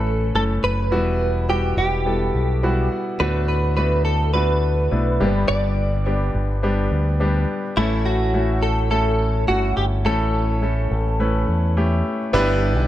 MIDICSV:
0, 0, Header, 1, 4, 480
1, 0, Start_track
1, 0, Tempo, 571157
1, 770, Time_signature, 4, 2, 24, 8
1, 10819, End_track
2, 0, Start_track
2, 0, Title_t, "Clean electric guitar"
2, 0, Program_c, 0, 27
2, 0, Note_on_c, 0, 69, 88
2, 288, Note_off_c, 0, 69, 0
2, 299, Note_on_c, 0, 69, 85
2, 362, Note_off_c, 0, 69, 0
2, 537, Note_on_c, 0, 71, 89
2, 1220, Note_off_c, 0, 71, 0
2, 1257, Note_on_c, 0, 67, 74
2, 1485, Note_off_c, 0, 67, 0
2, 1496, Note_on_c, 0, 67, 76
2, 2419, Note_off_c, 0, 67, 0
2, 2689, Note_on_c, 0, 71, 79
2, 2918, Note_off_c, 0, 71, 0
2, 2928, Note_on_c, 0, 71, 68
2, 3152, Note_off_c, 0, 71, 0
2, 3165, Note_on_c, 0, 71, 76
2, 3398, Note_off_c, 0, 71, 0
2, 3401, Note_on_c, 0, 69, 72
2, 3640, Note_off_c, 0, 69, 0
2, 3644, Note_on_c, 0, 71, 82
2, 4603, Note_off_c, 0, 71, 0
2, 4607, Note_on_c, 0, 74, 90
2, 5295, Note_off_c, 0, 74, 0
2, 6530, Note_on_c, 0, 64, 89
2, 6770, Note_on_c, 0, 66, 87
2, 6777, Note_off_c, 0, 64, 0
2, 7249, Note_on_c, 0, 69, 89
2, 7264, Note_off_c, 0, 66, 0
2, 7472, Note_off_c, 0, 69, 0
2, 7487, Note_on_c, 0, 69, 93
2, 7935, Note_off_c, 0, 69, 0
2, 7968, Note_on_c, 0, 66, 82
2, 8206, Note_off_c, 0, 66, 0
2, 8209, Note_on_c, 0, 67, 75
2, 8274, Note_off_c, 0, 67, 0
2, 8454, Note_on_c, 0, 69, 84
2, 9858, Note_off_c, 0, 69, 0
2, 10819, End_track
3, 0, Start_track
3, 0, Title_t, "Grand piano"
3, 0, Program_c, 1, 0
3, 0, Control_c, 1, 64, 127
3, 0, Note_on_c, 1, 45, 56
3, 0, Note_on_c, 1, 52, 55
3, 0, Note_on_c, 1, 57, 64
3, 0, Note_on_c, 1, 61, 56
3, 0, Note_on_c, 1, 64, 58
3, 0, Note_on_c, 1, 69, 72
3, 0, Note_on_c, 1, 71, 71
3, 160, Note_off_c, 1, 57, 0
3, 161, Note_off_c, 1, 61, 0
3, 162, Note_off_c, 1, 64, 0
3, 163, Note_off_c, 1, 71, 0
3, 291, Note_on_c, 1, 57, 62
3, 293, Note_on_c, 1, 61, 57
3, 295, Note_on_c, 1, 64, 54
3, 297, Note_off_c, 1, 69, 0
3, 297, Note_on_c, 1, 69, 67
3, 641, Note_off_c, 1, 57, 0
3, 643, Note_off_c, 1, 61, 0
3, 643, Note_off_c, 1, 64, 0
3, 645, Note_off_c, 1, 69, 0
3, 767, Note_on_c, 1, 55, 79
3, 769, Note_on_c, 1, 59, 70
3, 771, Note_on_c, 1, 47, 55
3, 772, Note_on_c, 1, 64, 72
3, 772, Note_on_c, 1, 66, 93
3, 782, Control_c, 1, 64, 0
3, 788, Note_off_c, 1, 52, 0
3, 789, Note_off_c, 1, 45, 0
3, 951, Control_c, 1, 64, 127
3, 1119, Note_off_c, 1, 55, 0
3, 1121, Note_off_c, 1, 59, 0
3, 1122, Note_off_c, 1, 64, 0
3, 1122, Note_off_c, 1, 66, 0
3, 1247, Note_on_c, 1, 55, 66
3, 1250, Note_on_c, 1, 59, 56
3, 1252, Note_on_c, 1, 64, 60
3, 1253, Note_on_c, 1, 66, 72
3, 1456, Note_off_c, 1, 47, 0
3, 1600, Note_off_c, 1, 55, 0
3, 1601, Note_off_c, 1, 59, 0
3, 1602, Note_off_c, 1, 64, 0
3, 1603, Note_off_c, 1, 66, 0
3, 1726, Note_on_c, 1, 55, 58
3, 1730, Note_on_c, 1, 59, 58
3, 1732, Note_on_c, 1, 64, 54
3, 1735, Note_on_c, 1, 69, 69
3, 2079, Note_off_c, 1, 55, 0
3, 2081, Note_off_c, 1, 59, 0
3, 2082, Note_off_c, 1, 64, 0
3, 2083, Note_off_c, 1, 69, 0
3, 2209, Note_on_c, 1, 55, 69
3, 2212, Note_on_c, 1, 83, 62
3, 2213, Note_on_c, 1, 59, 64
3, 2214, Note_on_c, 1, 64, 65
3, 2217, Note_on_c, 1, 66, 83
3, 2434, Note_off_c, 1, 83, 0
3, 2452, Note_on_c, 1, 78, 58
3, 2561, Note_off_c, 1, 55, 0
3, 2562, Note_off_c, 1, 59, 0
3, 2563, Note_off_c, 1, 64, 0
3, 2565, Note_off_c, 1, 66, 0
3, 2674, Note_off_c, 1, 78, 0
3, 2690, Note_on_c, 1, 57, 75
3, 2691, Note_on_c, 1, 59, 67
3, 2693, Note_on_c, 1, 62, 73
3, 2694, Note_on_c, 1, 45, 53
3, 2697, Note_on_c, 1, 66, 91
3, 2698, Control_c, 1, 64, 0
3, 2854, Control_c, 1, 64, 127
3, 3041, Note_off_c, 1, 57, 0
3, 3041, Note_off_c, 1, 59, 0
3, 3043, Note_off_c, 1, 62, 0
3, 3045, Note_off_c, 1, 66, 0
3, 3167, Note_on_c, 1, 57, 60
3, 3171, Note_on_c, 1, 59, 58
3, 3172, Note_on_c, 1, 62, 56
3, 3174, Note_on_c, 1, 66, 69
3, 3378, Note_off_c, 1, 45, 0
3, 3520, Note_off_c, 1, 57, 0
3, 3522, Note_off_c, 1, 59, 0
3, 3522, Note_off_c, 1, 62, 0
3, 3523, Note_off_c, 1, 66, 0
3, 3650, Note_on_c, 1, 57, 60
3, 3652, Note_on_c, 1, 59, 59
3, 3654, Note_on_c, 1, 62, 55
3, 3657, Note_on_c, 1, 66, 73
3, 4001, Note_off_c, 1, 57, 0
3, 4002, Note_off_c, 1, 59, 0
3, 4003, Note_off_c, 1, 62, 0
3, 4005, Note_off_c, 1, 66, 0
3, 4129, Note_on_c, 1, 57, 65
3, 4131, Note_on_c, 1, 59, 55
3, 4136, Note_on_c, 1, 62, 58
3, 4136, Note_on_c, 1, 64, 70
3, 4361, Note_off_c, 1, 62, 0
3, 4369, Note_off_c, 1, 57, 0
3, 4370, Note_off_c, 1, 59, 0
3, 4371, Note_on_c, 1, 55, 80
3, 4373, Note_off_c, 1, 64, 0
3, 4373, Note_on_c, 1, 43, 69
3, 4373, Note_on_c, 1, 58, 61
3, 4374, Note_on_c, 1, 50, 66
3, 4374, Note_on_c, 1, 62, 75
3, 4376, Note_on_c, 1, 67, 88
3, 4382, Control_c, 1, 64, 0
3, 4426, Note_off_c, 1, 58, 0
3, 4426, Note_on_c, 1, 59, 73
3, 4525, Control_c, 1, 64, 127
3, 4946, Note_off_c, 1, 55, 0
3, 4948, Note_off_c, 1, 62, 0
3, 4949, Note_off_c, 1, 67, 0
3, 4974, Note_off_c, 1, 59, 0
3, 5058, Note_off_c, 1, 43, 0
3, 5058, Note_off_c, 1, 50, 0
3, 5093, Note_on_c, 1, 55, 65
3, 5095, Note_on_c, 1, 59, 62
3, 5098, Note_on_c, 1, 62, 61
3, 5098, Note_on_c, 1, 67, 72
3, 5443, Note_off_c, 1, 55, 0
3, 5444, Note_off_c, 1, 59, 0
3, 5445, Note_off_c, 1, 62, 0
3, 5445, Note_off_c, 1, 67, 0
3, 5570, Note_on_c, 1, 55, 76
3, 5573, Note_on_c, 1, 59, 73
3, 5574, Note_on_c, 1, 62, 73
3, 5577, Note_on_c, 1, 67, 82
3, 5921, Note_off_c, 1, 55, 0
3, 5923, Note_off_c, 1, 59, 0
3, 5923, Note_off_c, 1, 62, 0
3, 5925, Note_off_c, 1, 67, 0
3, 6050, Note_on_c, 1, 55, 75
3, 6051, Note_on_c, 1, 59, 66
3, 6054, Note_on_c, 1, 62, 66
3, 6057, Note_on_c, 1, 67, 83
3, 6401, Note_off_c, 1, 55, 0
3, 6402, Note_off_c, 1, 59, 0
3, 6403, Note_off_c, 1, 62, 0
3, 6405, Note_off_c, 1, 67, 0
3, 6530, Note_on_c, 1, 57, 85
3, 6533, Note_on_c, 1, 61, 78
3, 6534, Note_on_c, 1, 52, 58
3, 6534, Note_on_c, 1, 64, 81
3, 6535, Note_on_c, 1, 45, 57
3, 6538, Note_on_c, 1, 69, 87
3, 6540, Control_c, 1, 64, 0
3, 6676, Control_c, 1, 64, 127
3, 6881, Note_off_c, 1, 57, 0
3, 6883, Note_off_c, 1, 61, 0
3, 6883, Note_off_c, 1, 64, 0
3, 6885, Note_off_c, 1, 69, 0
3, 7008, Note_on_c, 1, 57, 67
3, 7009, Note_on_c, 1, 61, 64
3, 7011, Note_on_c, 1, 64, 62
3, 7014, Note_on_c, 1, 66, 74
3, 7218, Note_off_c, 1, 52, 0
3, 7219, Note_off_c, 1, 45, 0
3, 7360, Note_off_c, 1, 57, 0
3, 7360, Note_off_c, 1, 61, 0
3, 7362, Note_off_c, 1, 64, 0
3, 7363, Note_off_c, 1, 66, 0
3, 7484, Note_on_c, 1, 57, 61
3, 7487, Note_on_c, 1, 61, 60
3, 7488, Note_on_c, 1, 64, 60
3, 7491, Note_on_c, 1, 69, 75
3, 7838, Note_off_c, 1, 57, 0
3, 7840, Note_off_c, 1, 61, 0
3, 7840, Note_off_c, 1, 64, 0
3, 7841, Note_off_c, 1, 69, 0
3, 7965, Note_on_c, 1, 57, 58
3, 7967, Note_on_c, 1, 61, 56
3, 7970, Note_on_c, 1, 64, 56
3, 7973, Note_on_c, 1, 66, 71
3, 8319, Note_off_c, 1, 57, 0
3, 8320, Note_off_c, 1, 61, 0
3, 8321, Note_off_c, 1, 64, 0
3, 8323, Note_off_c, 1, 66, 0
3, 8446, Note_on_c, 1, 57, 79
3, 8448, Note_on_c, 1, 45, 53
3, 8449, Note_on_c, 1, 61, 75
3, 8450, Note_on_c, 1, 52, 53
3, 8451, Note_on_c, 1, 64, 76
3, 8452, Note_on_c, 1, 69, 91
3, 8799, Note_off_c, 1, 57, 0
3, 8801, Note_off_c, 1, 61, 0
3, 8801, Note_off_c, 1, 64, 0
3, 8802, Note_off_c, 1, 69, 0
3, 8924, Note_on_c, 1, 57, 63
3, 8929, Note_on_c, 1, 61, 57
3, 8929, Note_on_c, 1, 64, 62
3, 8933, Note_on_c, 1, 69, 74
3, 9135, Note_off_c, 1, 45, 0
3, 9136, Note_off_c, 1, 52, 0
3, 9278, Note_off_c, 1, 57, 0
3, 9280, Note_off_c, 1, 64, 0
3, 9281, Note_off_c, 1, 61, 0
3, 9282, Note_off_c, 1, 69, 0
3, 9409, Note_on_c, 1, 57, 71
3, 9413, Note_on_c, 1, 61, 69
3, 9414, Note_on_c, 1, 64, 67
3, 9415, Note_on_c, 1, 71, 80
3, 9761, Note_off_c, 1, 57, 0
3, 9762, Note_off_c, 1, 61, 0
3, 9763, Note_off_c, 1, 64, 0
3, 9764, Note_off_c, 1, 71, 0
3, 9890, Note_on_c, 1, 57, 75
3, 9891, Note_on_c, 1, 61, 65
3, 9893, Note_on_c, 1, 64, 63
3, 9894, Note_on_c, 1, 67, 81
3, 10241, Note_off_c, 1, 57, 0
3, 10241, Note_off_c, 1, 61, 0
3, 10242, Note_off_c, 1, 64, 0
3, 10243, Note_off_c, 1, 67, 0
3, 10364, Note_on_c, 1, 59, 105
3, 10366, Note_on_c, 1, 62, 101
3, 10367, Note_on_c, 1, 64, 99
3, 10368, Note_on_c, 1, 43, 69
3, 10368, Note_on_c, 1, 50, 74
3, 10370, Note_on_c, 1, 67, 99
3, 10371, Note_on_c, 1, 71, 120
3, 10380, Control_c, 1, 64, 0
3, 10514, Control_c, 1, 64, 127
3, 10718, Note_off_c, 1, 59, 0
3, 10719, Note_off_c, 1, 62, 0
3, 10719, Note_off_c, 1, 64, 0
3, 10721, Note_off_c, 1, 67, 0
3, 10721, Note_off_c, 1, 71, 0
3, 10819, Note_off_c, 1, 43, 0
3, 10819, Note_off_c, 1, 50, 0
3, 10819, End_track
4, 0, Start_track
4, 0, Title_t, "Fingered electric bass"
4, 0, Program_c, 2, 33
4, 0, Note_on_c, 2, 33, 83
4, 255, Note_off_c, 2, 33, 0
4, 292, Note_on_c, 2, 30, 78
4, 514, Note_off_c, 2, 30, 0
4, 531, Note_on_c, 2, 30, 72
4, 772, Note_off_c, 2, 30, 0
4, 772, Note_on_c, 2, 28, 88
4, 1457, Note_off_c, 2, 28, 0
4, 1486, Note_on_c, 2, 28, 85
4, 1934, Note_off_c, 2, 28, 0
4, 1968, Note_on_c, 2, 35, 79
4, 2415, Note_off_c, 2, 35, 0
4, 2690, Note_on_c, 2, 38, 86
4, 4096, Note_off_c, 2, 38, 0
4, 4133, Note_on_c, 2, 35, 74
4, 4355, Note_off_c, 2, 35, 0
4, 4371, Note_on_c, 2, 31, 86
4, 4594, Note_off_c, 2, 31, 0
4, 4611, Note_on_c, 2, 31, 93
4, 5296, Note_off_c, 2, 31, 0
4, 5331, Note_on_c, 2, 31, 89
4, 5777, Note_off_c, 2, 31, 0
4, 5810, Note_on_c, 2, 38, 79
4, 6256, Note_off_c, 2, 38, 0
4, 6529, Note_on_c, 2, 33, 92
4, 7936, Note_off_c, 2, 33, 0
4, 7969, Note_on_c, 2, 31, 81
4, 8193, Note_off_c, 2, 31, 0
4, 8209, Note_on_c, 2, 31, 78
4, 8432, Note_off_c, 2, 31, 0
4, 8449, Note_on_c, 2, 33, 93
4, 9135, Note_off_c, 2, 33, 0
4, 9168, Note_on_c, 2, 33, 81
4, 9615, Note_off_c, 2, 33, 0
4, 9648, Note_on_c, 2, 40, 75
4, 10095, Note_off_c, 2, 40, 0
4, 10368, Note_on_c, 2, 31, 107
4, 10725, Note_off_c, 2, 31, 0
4, 10725, Note_on_c, 2, 35, 86
4, 10819, Note_off_c, 2, 35, 0
4, 10819, End_track
0, 0, End_of_file